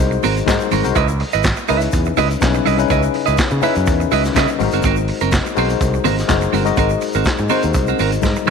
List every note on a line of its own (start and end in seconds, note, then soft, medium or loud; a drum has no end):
0.00 0.16 C2 loud
0.00 0.46 G#3 loud
0.00 0.47 D#4 medium
0.00 0.47 F#4 medium
0.00 0.47 A#4 medium
0.00 0.47 C5 loud
0.11 muted clean electric guitar stroke soft
0.11 shaker soft
0.23 0.41 G#1 medium
0.23 0.38 C4 loud
0.23 0.36 F#4 loud
0.23 0.35 A#4 loud
0.23 open hi-hat medium
0.23 muted conga medium
0.23 shaker medium
0.36 muted clean electric guitar stroke medium
0.36 closed hi-hat soft
0.36 shaker medium
0.46 0.57 G#2 medium
0.46 0.78 G#3 loud
0.46 0.78 D#4 medium
0.46 0.78 F#4 medium
0.46 0.79 A#4 medium
0.46 0.79 C5 loud
0.46 muted clean electric guitar stroke soft
0.46 kick loud
0.46 snare loud
0.46 clap medium
0.46 closed hi-hat medium
0.46 high conga medium
0.46 shaker medium
0.60 muted clean electric guitar stroke soft
0.60 shaker medium
0.71 0.81 G#1 medium
0.71 0.87 C4 medium
0.71 0.85 F#4 medium
0.71 0.84 A#4 medium
0.71 open hi-hat medium
0.71 high conga loud
0.71 shaker medium
0.83 0.93 C2 medium
0.83 0.95 G#3 medium
0.83 0.95 D#4 medium
0.83 0.96 F#4 medium
0.83 0.96 A#4 medium
0.83 0.96 C5 loud
0.83 muted clean electric guitar stroke medium
0.83 closed hi-hat medium
0.83 shaker medium
0.95 1.22 C#2 loud
0.95 1.11 E4 medium
0.95 1.08 B4 medium
0.95 1.07 D#5 loud
0.95 kick loud
0.95 closed hi-hat medium
0.95 muted conga medium
0.95 shaker medium
1.08 muted clean electric guitar stroke soft
1.08 shaker medium
1.20 muted clean electric guitar stroke soft
1.20 open hi-hat medium
1.20 muted conga soft
1.32 1.51 G#1 medium
1.32 1.44 E4 medium
1.32 1.44 B4 medium
1.32 1.44 D#5 medium
1.32 closed hi-hat soft
1.32 shaker medium
1.43 kick loud
1.43 snare loud
1.43 clap medium
1.43 closed hi-hat medium
1.43 high conga medium
1.43 shaker medium
1.56 muted clean electric guitar stroke soft
1.56 shaker soft
1.68 1.87 C#2 loud
1.68 2.31 C#3 medium
1.68 2.31 C#4 medium
1.68 2.31 D#4 medium
1.68 1.89 E4 medium
1.68 2.31 E4 loud
1.68 1.82 B4 loud
1.68 2.32 B4 loud
1.68 1.82 E5 medium
1.68 open hi-hat medium
1.68 shaker medium
1.81 muted clean electric guitar stroke soft
1.81 closed hi-hat medium
1.81 shaker medium
1.92 2.10 E2 medium
1.92 muted clean electric guitar stroke soft
1.92 kick loud
1.92 closed hi-hat medium
1.92 shaker medium
2.05 muted clean electric guitar stroke soft
2.05 shaker medium
2.17 2.35 C#2 medium
2.17 2.32 E4 medium
2.17 2.29 B4 loud
2.17 2.28 D#5 loud
2.17 open hi-hat medium
2.17 muted conga medium
2.17 low conga loud
2.17 shaker medium
2.29 muted clean electric guitar stroke medium
2.29 closed hi-hat medium
2.29 shaker medium
2.41 2.59 B1 medium
2.41 2.72 C#3 loud
2.41 2.73 C#4 medium
2.41 2.73 D#4 medium
2.41 2.73 E4 medium
2.41 2.73 B4 loud
2.41 muted clean electric guitar stroke soft
2.41 kick loud
2.41 snare loud
2.41 clap loud
2.41 closed hi-hat medium
2.41 high conga medium
2.41 shaker medium
2.54 muted clean electric guitar stroke medium
2.54 shaker medium
2.65 2.84 C2 medium
2.65 2.81 E4 medium
2.65 2.78 B4 medium
2.65 2.77 D#5 medium
2.65 open hi-hat medium
2.65 high conga medium
2.65 shaker medium
2.78 3.50 C#3 medium
2.78 3.50 C#4 medium
2.78 3.50 D#4 medium
2.78 3.51 E4 medium
2.78 3.51 B4 loud
2.78 muted clean electric guitar stroke medium
2.78 closed hi-hat medium
2.78 shaker medium
2.88 3.07 C#2 loud
2.88 3.05 E4 medium
2.88 3.03 B4 medium
2.88 3.02 D#5 medium
2.88 kick loud
2.88 closed hi-hat medium
2.88 muted conga medium
2.88 shaker medium
3.03 muted clean electric guitar stroke soft
3.03 shaker medium
3.14 muted clean electric guitar stroke soft
3.14 open hi-hat medium
3.14 muted conga soft
3.26 3.36 C#2 medium
3.26 3.37 E4 medium
3.26 3.37 B4 medium
3.26 3.37 D#5 medium
3.26 closed hi-hat medium
3.26 shaker medium
3.37 muted clean electric guitar stroke soft
3.37 kick loud
3.37 snare loud
3.37 clap medium
3.37 closed hi-hat medium
3.37 high conga medium
3.37 shaker medium
3.51 3.60 C#3 loud
3.51 muted clean electric guitar stroke soft
3.51 shaker soft
3.62 4.25 C#3 loud
3.62 4.25 C#4 medium
3.62 3.87 D#4 medium
3.62 3.86 E4 medium
3.62 3.78 E4 medium
3.62 3.87 B4 loud
3.62 3.76 B4 medium
3.62 3.76 E5 medium
3.62 open hi-hat medium
3.62 low conga medium
3.62 shaker medium
3.76 3.88 F#2 medium
3.76 muted clean electric guitar stroke soft
3.76 closed hi-hat medium
3.76 shaker medium
3.86 4.04 E2 loud
3.86 4.10 E4 medium
3.86 4.10 A#4 medium
3.86 muted clean electric guitar stroke soft
3.86 kick loud
3.86 closed hi-hat medium
3.86 shaker loud
4.00 muted clean electric guitar stroke soft
4.00 shaker medium
4.11 4.29 C#2 medium
4.11 4.26 E4 medium
4.11 4.34 F#4 medium
4.11 4.34 B4 medium
4.11 4.24 B4 medium
4.11 4.23 D#5 medium
4.11 open hi-hat medium
4.11 muted conga medium
4.11 shaker medium
4.24 muted clean electric guitar stroke soft
4.24 snare soft
4.24 closed hi-hat soft
4.24 shaker medium
4.35 4.45 C#3 loud
4.35 4.51 E4 medium
4.35 4.58 A#4 medium
4.35 4.49 B4 loud
4.35 4.49 D#5 loud
4.35 kick loud
4.35 snare loud
4.35 clap medium
4.35 closed hi-hat medium
4.35 high conga medium
4.35 shaker medium
4.48 muted clean electric guitar stroke soft
4.48 shaker medium
4.58 4.69 G#1 loud
4.58 5.42 G#3 medium
4.58 5.42 D#4 medium
4.58 5.42 F#4 medium
4.58 5.42 A#4 medium
4.58 5.43 C5 loud
4.58 muted clean electric guitar stroke soft
4.58 open hi-hat medium
4.58 high conga loud
4.58 shaker medium
4.72 4.81 G1 medium
4.72 4.84 C4 medium
4.72 4.84 F#4 medium
4.72 4.84 A#4 medium
4.72 closed hi-hat medium
4.72 shaker medium
4.82 5.10 G#1 loud
4.82 4.99 C4 loud
4.82 4.97 F#4 loud
4.82 kick loud
4.82 closed hi-hat medium
4.82 muted conga medium
4.82 shaker medium
4.87 4.96 A#4 medium
4.96 muted clean electric guitar stroke medium
4.96 shaker medium
5.08 muted clean electric guitar stroke medium
5.08 open hi-hat medium
5.08 muted conga soft
5.20 5.38 F#1 medium
5.20 5.32 C4 medium
5.20 5.32 F#4 medium
5.20 5.32 A#4 medium
5.20 closed hi-hat soft
5.20 shaker medium
5.31 kick loud
5.31 snare loud
5.31 clap medium
5.31 closed hi-hat medium
5.31 high conga medium
5.31 shaker medium
5.46 muted clean electric guitar stroke medium
5.46 shaker soft
5.55 5.74 B1 medium
5.55 6.18 G#3 loud
5.55 5.72 C4 medium
5.55 6.19 D#4 medium
5.55 6.19 F#4 medium
5.55 5.71 F#4 medium
5.55 6.19 A#4 medium
5.55 6.19 C5 loud
5.55 open hi-hat medium
5.55 shaker medium
5.59 5.70 C5 medium
5.69 muted clean electric guitar stroke soft
5.69 closed hi-hat medium
5.69 shaker medium
5.81 5.98 C2 loud
5.81 muted clean electric guitar stroke soft
5.81 kick loud
5.81 closed hi-hat medium
5.81 shaker medium
5.94 muted clean electric guitar stroke soft
5.94 shaker soft
6.04 6.22 G#1 medium
6.04 6.20 C4 loud
6.04 6.17 F#4 medium
6.04 6.16 A#4 loud
6.04 open hi-hat medium
6.04 muted conga medium
6.04 low conga loud
6.04 shaker medium
6.17 muted clean electric guitar stroke medium
6.17 snare soft
6.17 closed hi-hat soft
6.17 shaker medium
6.28 6.46 F#1 medium
6.28 6.60 G#3 loud
6.28 6.60 D#4 medium
6.28 6.60 F#4 medium
6.28 6.60 A#4 medium
6.28 6.61 C5 loud
6.28 muted clean electric guitar stroke soft
6.28 kick loud
6.28 snare loud
6.28 clap loud
6.28 closed hi-hat medium
6.28 high conga medium
6.28 shaker medium
6.41 muted clean electric guitar stroke medium
6.41 shaker medium
6.53 6.70 G1 loud
6.53 6.68 C4 medium
6.53 6.67 F#4 medium
6.53 6.66 A#4 loud
6.53 open hi-hat medium
6.53 high conga loud
6.53 shaker medium
6.64 7.37 G#3 medium
6.64 7.38 D#4 medium
6.64 7.38 F#4 medium
6.64 7.38 A#4 medium
6.64 7.38 D#5 loud
6.64 muted clean electric guitar stroke soft
6.64 closed hi-hat medium
6.64 shaker medium
6.76 6.95 G#1 loud
6.76 6.92 C4 medium
6.76 6.91 F#4 medium
6.76 6.90 A#4 loud
6.76 kick loud
6.76 closed hi-hat medium
6.76 muted conga medium
6.76 shaker medium
6.89 muted clean electric guitar stroke medium
6.89 shaker medium
7.01 muted clean electric guitar stroke soft
7.01 open hi-hat medium
7.01 muted conga soft
7.01 shaker medium
7.13 7.23 G#1 medium
7.13 7.25 C4 medium
7.13 7.26 F#4 medium
7.13 7.25 A#4 medium
7.13 closed hi-hat soft
7.13 shaker medium
7.24 muted clean electric guitar stroke soft
7.24 kick loud
7.24 snare loud
7.24 clap medium
7.24 closed hi-hat medium
7.24 high conga medium
7.24 shaker medium
7.38 7.47 G#2 loud
7.38 muted clean electric guitar stroke soft
7.38 shaker soft
7.49 8.12 G#3 medium
7.49 7.65 C4 medium
7.49 8.12 D#4 medium
7.49 8.13 F#4 medium
7.49 7.64 F#4 medium
7.49 8.13 A#4 medium
7.49 8.13 C5 loud
7.49 7.63 C5 medium
7.49 open hi-hat medium
7.49 low conga medium
7.49 shaker medium
7.63 7.72 D#2 loud
7.63 muted clean electric guitar stroke soft
7.63 closed hi-hat medium
7.63 shaker medium
7.74 7.92 C2 medium
7.74 muted clean electric guitar stroke soft
7.74 kick loud
7.74 closed hi-hat medium
7.74 shaker loud
7.87 7.98 C4 medium
7.87 7.99 F#4 medium
7.87 7.98 A#4 medium
7.87 shaker soft
7.99 8.17 G#1 medium
7.99 8.14 C4 medium
7.99 8.12 F#4 loud
7.99 8.11 A#4 loud
7.99 open hi-hat medium
7.99 muted conga medium
7.99 shaker medium
8.12 muted clean electric guitar stroke medium
8.12 closed hi-hat soft
8.12 shaker medium
8.22 8.33 G#2 loud
8.22 8.46 D#5 medium
8.22 8.46 A#5 medium
8.22 muted clean electric guitar stroke soft
8.22 kick loud
8.22 snare medium
8.22 high conga medium
8.22 shaker medium
8.36 muted clean electric guitar stroke medium
8.36 shaker medium
8.46 high conga loud